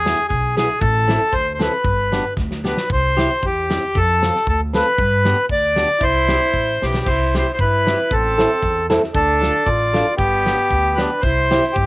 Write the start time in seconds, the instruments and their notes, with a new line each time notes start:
Already playing: upright bass E2, accordion G#4
0.05 steel-string acoustic guitar B3 E4 G#4, snare, hi-hat pedal
0.28 upright bass B1, accordion G#4, kick
0.57 steel-string acoustic guitar B3 E4 G#4, accordion G#4, snare, hi-hat pedal
0.80 upright bass A1, accordion A4, kick
1.08 steel-string acoustic guitar C4 E4 A4, snare, hi-hat pedal
1.32 upright bass D2, accordion C5, kick
1.54 accordion C5
1.59 steel-string acoustic guitar C4 E4 A4, accordion B4, snare, hi-hat pedal
1.84 upright bass G1, kick
2.12 steel-string acoustic guitar B3 D4 G4, snare, hi-hat pedal
2.37 upright bass D2, kick, snare
2.51 snare
2.64 steel-string acoustic guitar B3 D4 G4, accordion B4, snare, hi-hat pedal
2.77 snare
2.90 upright bass C2, accordion C5, kick
3.17 steel-string acoustic guitar C4 E4 G4, snare, hi-hat pedal
3.43 upright bass E2, accordion G4, kick
3.70 steel-string acoustic guitar C4 E4 G4, snare, hi-hat pedal
3.95 upright bass F2, accordion A4, kick
4.22 steel-string acoustic guitar C4 F4 A4, snare, hi-hat pedal
4.36 snare
4.47 upright bass D2, accordion A4, kick
4.73 steel-string acoustic guitar C4 F4 A4, accordion B4, snare, hi-hat pedal
4.98 upright bass G2, kick
5.25 steel-string acoustic guitar B3 D4 G4, snare, hi-hat pedal
5.49 upright bass D2, accordion D5, kick
5.76 steel-string acoustic guitar B3 D4 G4, snare, hi-hat pedal
6.01 upright bass C2, trumpet E4, accordion C5, kick
6.28 steel-string acoustic guitar C4 E4 G4, snare, hi-hat pedal
6.53 upright bass A1, kick
6.82 upright bass B1, trumpet B3, steel-string acoustic guitar C4 E4 G4, accordion G4, snare, hi-hat pedal
6.94 snare
7.06 upright bass C2, trumpet E4, accordion C5, kick, crash
7.35 steel-string acoustic guitar C4 E4 G4, trumpet E4, accordion C5, snare, hi-hat pedal
7.53 trumpet E4, accordion C5
7.59 upright bass G2, trumpet E4, accordion B4, kick
7.86 steel-string acoustic guitar C4 E4 G4, snare, hi-hat pedal
8.11 upright bass A1, trumpet C4, accordion A4, kick
8.38 steel-string acoustic guitar C4 E4 A4, snare, hi-hat pedal
8.63 upright bass E2, kick
8.90 steel-string acoustic guitar C4 E4 A4, snare, hi-hat pedal
9.04 snare
9.14 upright bass D2, trumpet D4, accordion A4, kick
9.41 steel-string acoustic guitar D4 F4 A4, snare, hi-hat pedal
9.66 upright bass A1, trumpet F4, accordion D5, kick
9.93 steel-string acoustic guitar D4 F4 A4, snare, hi-hat pedal
10.16 upright bass G1, trumpet B3, accordion G4, kick
10.45 steel-string acoustic guitar B3 D4 G4, snare, hi-hat pedal
10.70 upright bass D2, kick
10.95 steel-string acoustic guitar B3 D4 G4, trumpet D4, accordion B4, snare, hi-hat pedal
11.20 upright bass C2, trumpet E4, accordion C5, kick
11.51 steel-string acoustic guitar C4 E4 G4, snare, hi-hat pedal
11.64 snare
11.73 upright bass G2, trumpet C4, accordion G4, kick